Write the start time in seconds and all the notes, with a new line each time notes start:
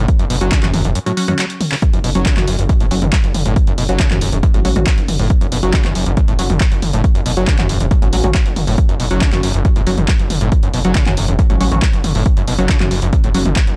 0.08 kick, closed hi-hat
0.19 F#1 F#2, closed hi-hat
0.30 F#1 B2, open hi-hat
0.41 F#1 F#3 C#4 F#4, closed hi-hat
0.52 C#3, kick, clap, closed hi-hat
0.63 E1 F#2 F#3 C#4 F#4, clap, closed hi-hat, mid tom
0.74 E1 F#2, open hi-hat, mid tom
0.85 E1 F#2, closed hi-hat
0.95 F#2, closed hi-hat
1.06 A2 F#3 C#4 F#4, closed hi-hat
1.17 F#3 C#4 F#4, open hi-hat
1.28 F#2 F#3 C#4 F#4, closed hi-hat, mid tom
1.39 F#3, clap, closed hi-hat
1.50 closed hi-hat
1.61 open hi-hat, mid tom
1.72 C#3, clap, open hi-hat
1.82 kick, closed hi-hat
1.93 F#1 F#2, closed hi-hat
2.04 F#1 B2, open hi-hat
2.15 F#1 F#3 C#4 F#4, closed hi-hat
2.26 C#3, kick, clap, closed hi-hat
2.37 F#1 F#2 F#3 C#4 F#4, clap, closed hi-hat, mid tom
2.48 F#1 F#2, open hi-hat
2.59 F#1 F#2, closed hi-hat
2.69 F#2, kick, closed hi-hat
2.80 E1 A2, closed hi-hat
2.91 F#1 F#3 C#4 F#4, open hi-hat
3.02 F#1 F#2, closed hi-hat, mid tom
3.13 F#3, kick, clap, closed hi-hat
3.24 F#1, closed hi-hat
3.34 F#1, open hi-hat, mid tom
3.45 F#1 A2, closed hi-hat
3.56 kick, closed hi-hat
3.67 F#1 F#2, closed hi-hat
3.78 F#1 B2, open hi-hat
3.89 F#1 F#3 C#4 F#4, closed hi-hat
4.00 C#3, kick, clap, closed hi-hat
4.11 E1 F#2 F#3 C#4 F#4, clap, closed hi-hat, mid tom
4.21 E1 F#2, open hi-hat
4.32 E1 F#2, closed hi-hat
4.43 F#2, kick, closed hi-hat
4.54 A1 A2 F#3 C#4 F#4, closed hi-hat
4.65 A1 F#3 C#4 F#4, open hi-hat
4.76 A1 F#2 F#3 C#4 F#4, closed hi-hat, mid tom
4.87 F#3, kick, clap, closed hi-hat
4.98 F#1, closed hi-hat
5.08 F#1, open hi-hat, mid tom
5.19 F#1 A2, open hi-hat
5.30 kick, closed hi-hat
5.41 F#1 F#2, closed hi-hat
5.52 F#1 B2, open hi-hat
5.63 F#1 F#3 C#4 F#4, closed hi-hat
5.74 C#3, kick, clap, closed hi-hat
5.85 F#1 F#2 F#3 C#4 F#4, clap, closed hi-hat, mid tom
5.95 F#1 F#2, open hi-hat
6.06 F#1 F#2, closed hi-hat
6.17 F#2, kick, closed hi-hat
6.28 E1 A2, closed hi-hat
6.39 F#1 F#3 C#4 F#4, open hi-hat
6.50 F#1 F#2, closed hi-hat, mid tom
6.61 F#3, kick, clap, closed hi-hat
6.72 F#1, closed hi-hat
6.82 F#1, open hi-hat, mid tom
6.93 F#1 A2, closed hi-hat
7.04 kick, closed hi-hat
7.15 F#1 F#2, closed hi-hat
7.26 F#1 B2, open hi-hat
7.37 F#1 F#3 C#4 F#4, closed hi-hat
7.48 C#3, kick, clap, closed hi-hat
7.59 E1 F#2 F#3 C#4 F#4, clap, closed hi-hat, mid tom
7.69 E1 F#2, open hi-hat
7.80 E1 F#2, closed hi-hat
7.91 F#2, kick, closed hi-hat
8.02 A1 A2 F#3 C#4 F#4, closed hi-hat
8.13 A1 F#3 C#4 F#4, open hi-hat
8.24 A1 F#2 F#3 C#4 F#4, closed hi-hat, mid tom
8.35 F#3, kick, clap, closed hi-hat
8.46 F#1, closed hi-hat
8.56 F#1, open hi-hat, mid tom
8.67 F#1 A2, open hi-hat
8.78 kick, closed hi-hat
8.89 F#1 F#2, closed hi-hat
9.00 F#1 B2, open hi-hat
9.11 F#1 F#3 C#4 F#4, closed hi-hat
9.21 C#3, kick, clap, closed hi-hat
9.32 F#1 F#2 F#3 C#4 F#4, clap, closed hi-hat, mid tom
9.43 F#1 F#2, open hi-hat
9.54 F#1 F#2, closed hi-hat
9.65 F#2, kick, closed hi-hat
9.76 E1 A2, closed hi-hat
9.87 F#1 F#3 C#4 F#4, open hi-hat
9.98 F#1 F#2, closed hi-hat, mid tom
10.08 F#3, kick, clap, closed hi-hat
10.19 F#1, closed hi-hat
10.30 F#1, open hi-hat, mid tom
10.41 F#1 A2, closed hi-hat
10.52 kick, closed hi-hat
10.63 F#1 F#2, closed hi-hat
10.74 F#1 B2, open hi-hat
10.85 F#1 F#3 C#4 F#4, closed hi-hat
10.95 C#3, kick, clap, closed hi-hat
11.06 E1 F#2 F#3 C#4 F#4, clap, closed hi-hat, mid tom
11.17 E1 F#2, open hi-hat
11.28 E1 F#2, closed hi-hat
11.39 F#2, kick, closed hi-hat
11.50 A1 A2 F#3 C#4 F#4, closed hi-hat
11.61 A1 F#3 C#4 F#4, open hi-hat
11.71 A1 F#2 F#3 C#4 F#4, closed hi-hat, mid tom
11.82 F#3, kick, clap, closed hi-hat
11.93 F#1, closed hi-hat
12.04 F#1, open hi-hat, mid tom
12.15 F#1 A2, open hi-hat
12.26 kick, closed hi-hat
12.37 F#1 F#2, closed hi-hat
12.47 F#1 B2, open hi-hat
12.58 F#1 F#3 C#4 F#4, closed hi-hat
12.69 C#3, kick, clap, closed hi-hat
12.80 F#1 F#2 F#3 C#4 F#4, clap, closed hi-hat, mid tom
12.91 F#1 F#2, open hi-hat
13.02 F#1 F#2, closed hi-hat
13.13 F#2, kick, closed hi-hat
13.24 E1 A2, closed hi-hat
13.34 F#1 F#3 C#4 F#4, open hi-hat
13.46 F#1 F#2, closed hi-hat, mid tom
13.56 F#3, kick, clap, closed hi-hat
13.67 F#1, closed hi-hat